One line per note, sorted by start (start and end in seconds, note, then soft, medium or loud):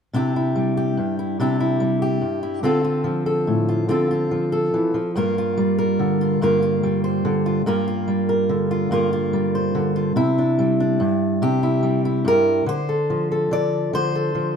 0.13 0.97 C3 medium
0.13 1.40 D4 medium
0.13 0.35 E4 soft
0.13 0.76 G4 medium
0.36 1.18 E4 soft
0.56 1.79 G3 medium
0.77 1.39 G4 soft
0.97 1.39 G2 medium
1.19 1.39 E4 soft
1.40 2.23 C3 medium
1.40 2.63 D4 soft
1.40 1.59 E4 soft
1.40 2.01 G4 medium
1.60 2.42 E4 soft
1.80 2.59 G3 medium
2.02 2.64 G4 medium
2.21 2.64 G2 soft
2.43 2.59 E4 soft
2.63 3.87 D3 medium
2.63 3.88 C4 medium
2.63 2.84 F4 medium
2.63 3.25 A4 medium
2.84 3.68 F4 soft
3.04 4.31 F3 medium
3.26 3.89 A4 medium
3.47 3.89 A2 medium
3.69 3.90 F4 soft
3.88 4.73 D3 medium
3.88 5.10 C4 medium
3.88 4.10 F4 soft
3.88 4.51 A4 medium
4.11 5.17 F4 soft
4.31 4.94 F3 medium
4.52 5.10 A4 medium
4.74 4.94 E3 medium
4.94 5.15 F3 medium
5.16 6.41 G2 medium
5.16 6.42 A#3 medium
5.16 5.38 F4 medium
5.16 5.78 A#4 medium
5.38 6.21 F4 medium
5.58 6.83 G3 medium
5.79 6.43 A#4 medium
5.99 7.24 D3 medium
6.21 6.43 F4 soft
6.41 7.65 G2 medium
6.41 7.66 A#3 soft
6.41 6.61 F4 soft
6.41 7.04 A#4 medium
6.62 7.45 F4 soft
6.83 7.70 G3 medium
7.04 7.61 C5 medium
7.25 7.61 D3 medium
7.46 7.61 F4 soft
7.66 8.90 G2 medium
7.66 8.91 A#3 medium
7.66 7.86 F4 medium
7.66 8.28 A#4 medium
7.88 8.70 F4 soft
8.08 9.32 G3 medium
8.29 8.91 A#4 medium
8.49 9.74 D3 medium
8.71 8.91 F4 soft
8.91 10.16 G2 medium
8.91 10.17 A#3 medium
8.91 9.12 F4 soft
8.91 9.55 A#4 soft
9.13 9.95 F4 medium
9.33 10.12 G3 soft
9.55 10.12 C5 soft
9.75 10.12 D3 medium
9.96 10.12 F4 soft
10.16 11.00 C3 medium
10.16 11.62 E4 medium
10.38 10.80 D4 soft
10.59 11.82 G3 medium
10.80 12.72 D4 soft
11.00 11.42 G2 medium
11.42 12.26 C3 medium
11.42 12.26 G4 medium
11.63 12.04 E4 soft
11.83 12.62 G3 medium
12.05 12.63 E4 soft
12.25 12.66 G2 medium
12.25 12.68 A#4 medium
12.66 13.50 D3 medium
12.66 13.52 C5 medium
12.89 13.30 A4 soft
13.10 14.35 F3 medium
13.32 14.14 A4 soft
13.51 13.92 D3 medium
13.51 13.94 D5 medium
13.93 14.56 D3 medium
13.93 14.56 C5 medium
14.15 14.56 A4 soft
14.35 14.56 F3 medium